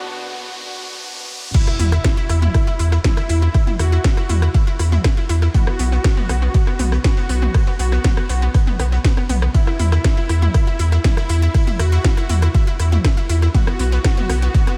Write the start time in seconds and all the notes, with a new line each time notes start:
Already playing: B2 B3 D4 F#4, riser
1.54 E4, kick, closed hi-hat, crash, ride, impact
1.67 E4, cross-stick
1.79 E2 E4, closed hi-hat, mid tom, open hi-hat
1.92 E4, cross-stick, snare
2.04 E4, kick, snare, closed hi-hat, ride
2.17 E4
2.29 E2 E4, cross-stick, closed hi-hat, open hi-hat
2.42 E4, mid tom
2.54 E4, kick, cross-stick, closed hi-hat, ride
2.67 E4
2.79 E2 E4, closed hi-hat, open hi-hat
2.92 E4, cross-stick, snare
3.04 E4, kick, snare, closed hi-hat, mid tom, ride
3.17 E4, cross-stick, snare
3.29 E2 E4, closed hi-hat, open hi-hat
3.42 E4
3.54 E4, kick, cross-stick, open hi-hat, ride
3.67 E4, mid tom
3.79 E2 E4 F#4, cross-stick, closed hi-hat, open hi-hat
3.92 E4, snare
4.04 E4, kick, snare, closed hi-hat, ride
4.17 E4, cross-stick
4.29 E2 E4, closed hi-hat, mid tom, open hi-hat
4.42 E4, cross-stick
4.54 E4, kick, ride
4.67 E4
4.79 E2 E4, cross-stick, closed hi-hat, open hi-hat
4.92 E4, snare, mid tom
5.04 E4, kick, cross-stick, snare, closed hi-hat, ride
5.17 E4
5.29 E2 E4, closed hi-hat, open hi-hat
5.42 E4, cross-stick, snare
5.54 B3 F#4, kick, closed hi-hat, mid tom, ride
5.67 B3, cross-stick
5.79 B1 B3, closed hi-hat, open hi-hat
5.92 B3, snare
6.04 B3, kick, cross-stick, snare, closed hi-hat, ride
6.17 B3, mid tom
6.29 B1 B3, cross-stick, closed hi-hat, open hi-hat
6.42 B3
6.54 B3, kick, closed hi-hat, ride
6.67 B3, cross-stick
6.79 B1 B3, closed hi-hat, mid tom, open hi-hat
6.92 B3, cross-stick, snare
7.04 B3 F#4, kick, snare, closed hi-hat, ride
7.17 B3, snare
7.29 B1 B3, closed hi-hat, open hi-hat
7.42 B3, mid tom
7.54 B3, kick, cross-stick, open hi-hat, ride
7.67 B3
7.79 B1 B3 F#4, closed hi-hat, open hi-hat
7.92 B3, cross-stick, snare
8.04 B3, kick, snare, closed hi-hat, mid tom, ride
8.17 B3, cross-stick
8.29 B1 B3, closed hi-hat, open hi-hat
8.42 B3
8.54 B3, kick, cross-stick, closed hi-hat, ride
8.67 B3, mid tom
8.79 B1 B3, cross-stick, closed hi-hat, open hi-hat
8.92 B3, snare
9.04 B3, kick, snare, closed hi-hat, ride
9.17 B3, cross-stick
9.29 B1 B3, closed hi-hat, mid tom, open hi-hat
9.42 B3, cross-stick
9.54 E4, kick, closed hi-hat, ride
9.67 E4, cross-stick
9.79 E2 E4, closed hi-hat, mid tom, open hi-hat
9.92 E4, cross-stick, snare
10.04 E4, kick, snare, closed hi-hat, ride
10.17 E4
10.29 E2 E4, cross-stick, closed hi-hat, open hi-hat
10.42 E4, mid tom
10.54 E4, kick, cross-stick, closed hi-hat, ride
10.67 E4
10.79 E2 E4, closed hi-hat, open hi-hat
10.92 E4, cross-stick, snare
11.04 E4, kick, snare, closed hi-hat, mid tom, ride
11.17 E4, cross-stick, snare
11.29 E2 E4, closed hi-hat, open hi-hat
11.42 E4
11.54 E4, kick, cross-stick, open hi-hat, ride
11.67 E4, mid tom
11.79 E2 E4 F#4, cross-stick, closed hi-hat, open hi-hat
11.92 E4, snare
12.04 E4, kick, snare, closed hi-hat, ride
12.17 E4, cross-stick
12.29 E2 E4, closed hi-hat, mid tom, open hi-hat
12.42 E4, cross-stick
12.54 E4, kick, ride
12.67 E4
12.79 E2 E4, cross-stick, closed hi-hat, open hi-hat
12.92 E4, snare, mid tom
13.04 E4, kick, cross-stick, snare, closed hi-hat, ride
13.17 E4
13.29 E2 E4, closed hi-hat, open hi-hat
13.42 E4, cross-stick, snare
13.54 B3 F#4, kick, closed hi-hat, mid tom, ride
13.67 B3, cross-stick
13.79 B1 B3, closed hi-hat, open hi-hat
13.92 B3, snare
14.04 B3, kick, cross-stick, snare, closed hi-hat, ride
14.17 B3, mid tom
14.29 B1 B3, cross-stick, closed hi-hat, open hi-hat
14.42 B3
14.54 B3, kick, closed hi-hat, ride
14.67 B3, cross-stick